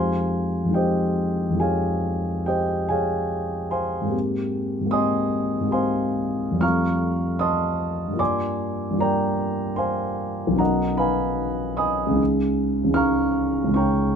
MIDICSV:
0, 0, Header, 1, 2, 480
1, 0, Start_track
1, 0, Tempo, 858369
1, 1390, Tempo, 817439
1, 2357, Time_signature, 5, 2, 24, 8
1, 3310, Tempo, 874636
1, 3790, Tempo, 788436
1, 5710, Tempo, 797872
1, 8110, Tempo, 859599
1, 8324, End_track
2, 0, Start_track
2, 0, Title_t, "Grand piano"
2, 0, Program_c, 0, 0
2, 0, Note_on_c, 0, 41, 30
2, 0, Note_on_c, 0, 56, 25
2, 0, Note_on_c, 0, 63, 25
2, 0, Note_on_c, 0, 65, 25
2, 0, Note_on_c, 0, 67, 26
2, 0, Note_on_c, 0, 72, 44
2, 0, Note_on_c, 0, 77, 44
2, 0, Note_on_c, 0, 80, 44
2, 0, Note_on_c, 0, 84, 59
2, 59, Control_c, 0, 64, 127
2, 353, Note_off_c, 0, 41, 0
2, 362, Note_on_c, 0, 41, 31
2, 368, Note_off_c, 0, 56, 0
2, 376, Note_on_c, 0, 56, 25
2, 381, Note_off_c, 0, 63, 0
2, 389, Note_on_c, 0, 63, 27
2, 394, Note_off_c, 0, 65, 0
2, 402, Note_on_c, 0, 65, 25
2, 407, Note_off_c, 0, 67, 0
2, 407, Note_off_c, 0, 80, 0
2, 408, Note_off_c, 0, 72, 0
2, 409, Note_off_c, 0, 77, 0
2, 414, Note_on_c, 0, 79, 49
2, 421, Note_on_c, 0, 75, 39
2, 425, Note_off_c, 0, 84, 0
2, 426, Note_on_c, 0, 67, 41
2, 426, Note_on_c, 0, 72, 41
2, 830, Note_off_c, 0, 41, 0
2, 839, Note_on_c, 0, 41, 32
2, 845, Note_off_c, 0, 56, 0
2, 853, Note_on_c, 0, 56, 25
2, 861, Note_off_c, 0, 63, 0
2, 870, Note_on_c, 0, 63, 25
2, 877, Note_off_c, 0, 65, 0
2, 882, Note_off_c, 0, 75, 0
2, 884, Note_off_c, 0, 67, 0
2, 885, Note_off_c, 0, 72, 0
2, 885, Note_on_c, 0, 65, 26
2, 892, Note_on_c, 0, 67, 26
2, 893, Note_on_c, 0, 80, 53
2, 901, Note_off_c, 0, 79, 0
2, 902, Note_on_c, 0, 77, 39
2, 903, Note_on_c, 0, 73, 40
2, 904, Note_on_c, 0, 68, 38
2, 1363, Note_off_c, 0, 77, 0
2, 1364, Note_off_c, 0, 68, 0
2, 1364, Note_off_c, 0, 73, 0
2, 1377, Note_off_c, 0, 67, 0
2, 1377, Note_on_c, 0, 79, 53
2, 1381, Note_off_c, 0, 80, 0
2, 1385, Note_on_c, 0, 67, 38
2, 1385, Note_on_c, 0, 75, 42
2, 1388, Note_on_c, 0, 72, 41
2, 1616, Note_off_c, 0, 67, 0
2, 1616, Note_off_c, 0, 75, 0
2, 1618, Note_off_c, 0, 72, 0
2, 1625, Note_on_c, 0, 80, 58
2, 1629, Note_off_c, 0, 79, 0
2, 1633, Note_on_c, 0, 73, 42
2, 1637, Note_on_c, 0, 77, 40
2, 1638, Note_on_c, 0, 68, 42
2, 2094, Note_off_c, 0, 73, 0
2, 2096, Note_off_c, 0, 68, 0
2, 2096, Note_off_c, 0, 77, 0
2, 2101, Note_off_c, 0, 80, 0
2, 2108, Note_on_c, 0, 84, 51
2, 2110, Note_on_c, 0, 80, 41
2, 2111, Note_on_c, 0, 72, 38
2, 2114, Note_on_c, 0, 77, 39
2, 2288, Note_on_c, 0, 44, 34
2, 2295, Note_off_c, 0, 56, 0
2, 2297, Note_off_c, 0, 41, 0
2, 2304, Note_on_c, 0, 56, 26
2, 2313, Note_off_c, 0, 63, 0
2, 2317, Note_on_c, 0, 58, 28
2, 2321, Note_off_c, 0, 65, 0
2, 2332, Note_on_c, 0, 60, 27
2, 2336, Note_off_c, 0, 72, 0
2, 2336, Note_off_c, 0, 80, 0
2, 2338, Note_off_c, 0, 77, 0
2, 2344, Note_on_c, 0, 67, 29
2, 2352, Note_off_c, 0, 84, 0
2, 2368, Control_c, 0, 64, 0
2, 2479, Control_c, 0, 64, 127
2, 2746, Note_off_c, 0, 44, 0
2, 2755, Note_on_c, 0, 44, 34
2, 2768, Note_off_c, 0, 56, 0
2, 2776, Note_off_c, 0, 58, 0
2, 2777, Note_on_c, 0, 56, 27
2, 2785, Note_on_c, 0, 58, 30
2, 2793, Note_off_c, 0, 60, 0
2, 2801, Note_on_c, 0, 60, 30
2, 2805, Note_off_c, 0, 67, 0
2, 2813, Note_on_c, 0, 87, 63
2, 2814, Note_on_c, 0, 67, 29
2, 2822, Note_on_c, 0, 80, 45
2, 2825, Note_on_c, 0, 75, 49
2, 2827, Note_on_c, 0, 84, 45
2, 3213, Note_off_c, 0, 44, 0
2, 3222, Note_on_c, 0, 44, 31
2, 3229, Note_off_c, 0, 56, 0
2, 3237, Note_on_c, 0, 56, 26
2, 3247, Note_off_c, 0, 58, 0
2, 3256, Note_on_c, 0, 58, 26
2, 3257, Note_off_c, 0, 60, 0
2, 3266, Note_on_c, 0, 60, 29
2, 3270, Note_off_c, 0, 67, 0
2, 3279, Note_on_c, 0, 67, 29
2, 3280, Note_off_c, 0, 80, 0
2, 3280, Note_off_c, 0, 84, 0
2, 3282, Note_off_c, 0, 75, 0
2, 3289, Note_on_c, 0, 84, 55
2, 3291, Note_on_c, 0, 80, 44
2, 3292, Note_on_c, 0, 72, 42
2, 3293, Note_on_c, 0, 77, 43
2, 3299, Note_off_c, 0, 87, 0
2, 3726, Note_on_c, 0, 41, 34
2, 3733, Note_off_c, 0, 44, 0
2, 3736, Note_on_c, 0, 55, 28
2, 3740, Note_off_c, 0, 56, 0
2, 3749, Note_off_c, 0, 58, 0
2, 3751, Note_on_c, 0, 57, 27
2, 3754, Note_off_c, 0, 60, 0
2, 3759, Note_off_c, 0, 72, 0
2, 3759, Note_off_c, 0, 77, 0
2, 3759, Note_off_c, 0, 80, 0
2, 3760, Note_off_c, 0, 67, 0
2, 3766, Note_on_c, 0, 60, 28
2, 3778, Note_on_c, 0, 89, 62
2, 3779, Note_on_c, 0, 65, 27
2, 3780, Note_off_c, 0, 84, 0
2, 3785, Note_on_c, 0, 85, 49
2, 3788, Note_on_c, 0, 82, 47
2, 3790, Note_on_c, 0, 77, 46
2, 3797, Control_c, 0, 64, 0
2, 3913, Control_c, 0, 64, 127
2, 4245, Note_off_c, 0, 85, 0
2, 4246, Note_off_c, 0, 82, 0
2, 4247, Note_off_c, 0, 77, 0
2, 4254, Note_on_c, 0, 87, 62
2, 4262, Note_on_c, 0, 75, 45
2, 4265, Note_off_c, 0, 89, 0
2, 4265, Note_on_c, 0, 81, 49
2, 4265, Note_on_c, 0, 84, 47
2, 4673, Note_on_c, 0, 43, 34
2, 4683, Note_off_c, 0, 55, 0
2, 4685, Note_off_c, 0, 41, 0
2, 4692, Note_on_c, 0, 55, 30
2, 4699, Note_off_c, 0, 57, 0
2, 4706, Note_on_c, 0, 58, 30
2, 4707, Note_off_c, 0, 60, 0
2, 4712, Note_off_c, 0, 65, 0
2, 4716, Note_off_c, 0, 75, 0
2, 4717, Note_off_c, 0, 81, 0
2, 4717, Note_off_c, 0, 84, 0
2, 4721, Note_on_c, 0, 65, 28
2, 4736, Note_off_c, 0, 87, 0
2, 4741, Note_on_c, 0, 74, 48
2, 4741, Note_on_c, 0, 86, 68
2, 4745, Note_on_c, 0, 84, 46
2, 4746, Note_on_c, 0, 80, 51
2, 4756, Control_c, 0, 64, 0
2, 4851, Control_c, 0, 64, 127
2, 5166, Note_off_c, 0, 43, 0
2, 5175, Note_on_c, 0, 43, 38
2, 5179, Note_off_c, 0, 55, 0
2, 5188, Note_on_c, 0, 55, 31
2, 5194, Note_off_c, 0, 58, 0
2, 5203, Note_off_c, 0, 65, 0
2, 5203, Note_off_c, 0, 74, 0
2, 5203, Note_on_c, 0, 58, 30
2, 5205, Note_off_c, 0, 84, 0
2, 5206, Note_off_c, 0, 80, 0
2, 5215, Note_on_c, 0, 65, 29
2, 5228, Note_off_c, 0, 86, 0
2, 5235, Note_on_c, 0, 82, 62
2, 5236, Note_on_c, 0, 74, 47
2, 5240, Note_on_c, 0, 70, 43
2, 5243, Note_on_c, 0, 79, 46
2, 5689, Note_off_c, 0, 74, 0
2, 5691, Note_off_c, 0, 70, 0
2, 5693, Note_off_c, 0, 79, 0
2, 5697, Note_on_c, 0, 84, 59
2, 5707, Note_on_c, 0, 77, 42
2, 5708, Note_on_c, 0, 72, 44
2, 5709, Note_on_c, 0, 80, 46
2, 5713, Note_off_c, 0, 82, 0
2, 6124, Note_on_c, 0, 35, 34
2, 6144, Note_on_c, 0, 54, 30
2, 6149, Note_off_c, 0, 43, 0
2, 6155, Note_off_c, 0, 55, 0
2, 6159, Note_on_c, 0, 59, 30
2, 6163, Note_off_c, 0, 58, 0
2, 6168, Note_off_c, 0, 65, 0
2, 6173, Note_on_c, 0, 61, 30
2, 6174, Note_off_c, 0, 77, 0
2, 6175, Note_off_c, 0, 72, 0
2, 6175, Note_off_c, 0, 80, 0
2, 6186, Note_on_c, 0, 63, 30
2, 6191, Note_on_c, 0, 82, 59
2, 6193, Note_off_c, 0, 84, 0
2, 6197, Note_on_c, 0, 78, 46
2, 6200, Note_on_c, 0, 70, 45
2, 6200, Note_on_c, 0, 75, 45
2, 6210, Control_c, 0, 64, 0
2, 6320, Control_c, 0, 64, 127
2, 6423, Note_off_c, 0, 78, 0
2, 6425, Note_off_c, 0, 70, 0
2, 6425, Note_off_c, 0, 75, 0
2, 6426, Note_on_c, 0, 83, 63
2, 6434, Note_on_c, 0, 71, 46
2, 6435, Note_on_c, 0, 77, 45
2, 6437, Note_off_c, 0, 82, 0
2, 6438, Note_on_c, 0, 80, 46
2, 6896, Note_off_c, 0, 71, 0
2, 6896, Note_off_c, 0, 77, 0
2, 6898, Note_off_c, 0, 80, 0
2, 6899, Note_off_c, 0, 83, 0
2, 6904, Note_on_c, 0, 87, 55
2, 6908, Note_on_c, 0, 83, 44
2, 6911, Note_on_c, 0, 75, 46
2, 6913, Note_on_c, 0, 80, 46
2, 7081, Note_on_c, 0, 37, 36
2, 7095, Note_on_c, 0, 49, 28
2, 7099, Note_off_c, 0, 35, 0
2, 7109, Note_off_c, 0, 54, 0
2, 7112, Note_on_c, 0, 56, 31
2, 7116, Note_off_c, 0, 61, 0
2, 7117, Note_off_c, 0, 59, 0
2, 7125, Note_on_c, 0, 61, 30
2, 7128, Note_off_c, 0, 63, 0
2, 7136, Note_off_c, 0, 83, 0
2, 7137, Note_on_c, 0, 63, 31
2, 7138, Note_off_c, 0, 75, 0
2, 7139, Note_off_c, 0, 80, 0
2, 7151, Note_off_c, 0, 87, 0
2, 7172, Control_c, 0, 64, 0
2, 7275, Control_c, 0, 64, 127
2, 7540, Note_off_c, 0, 37, 0
2, 7549, Note_on_c, 0, 37, 38
2, 7554, Note_off_c, 0, 49, 0
2, 7563, Note_on_c, 0, 49, 32
2, 7572, Note_off_c, 0, 56, 0
2, 7581, Note_off_c, 0, 61, 0
2, 7581, Note_on_c, 0, 56, 31
2, 7590, Note_on_c, 0, 61, 30
2, 7598, Note_off_c, 0, 63, 0
2, 7607, Note_on_c, 0, 63, 31
2, 7609, Note_on_c, 0, 89, 67
2, 7622, Note_on_c, 0, 77, 50
2, 7622, Note_on_c, 0, 82, 51
2, 7622, Note_on_c, 0, 85, 50
2, 8023, Note_off_c, 0, 37, 0
2, 8032, Note_on_c, 0, 37, 36
2, 8039, Note_off_c, 0, 49, 0
2, 8048, Note_on_c, 0, 49, 28
2, 8051, Note_off_c, 0, 56, 0
2, 8060, Note_on_c, 0, 56, 29
2, 8071, Note_off_c, 0, 61, 0
2, 8078, Note_off_c, 0, 77, 0
2, 8078, Note_off_c, 0, 82, 0
2, 8078, Note_off_c, 0, 85, 0
2, 8080, Note_off_c, 0, 63, 0
2, 8080, Note_on_c, 0, 61, 28
2, 8089, Note_on_c, 0, 63, 29
2, 8090, Note_on_c, 0, 85, 57
2, 8096, Note_off_c, 0, 89, 0
2, 8100, Note_on_c, 0, 73, 43
2, 8101, Note_on_c, 0, 79, 44
2, 8105, Note_on_c, 0, 82, 45
2, 8324, Note_off_c, 0, 37, 0
2, 8324, Note_off_c, 0, 49, 0
2, 8324, Note_off_c, 0, 56, 0
2, 8324, Note_off_c, 0, 61, 0
2, 8324, Note_off_c, 0, 63, 0
2, 8324, Note_off_c, 0, 73, 0
2, 8324, Note_off_c, 0, 79, 0
2, 8324, Note_off_c, 0, 82, 0
2, 8324, Note_off_c, 0, 85, 0
2, 8324, End_track
0, 0, End_of_file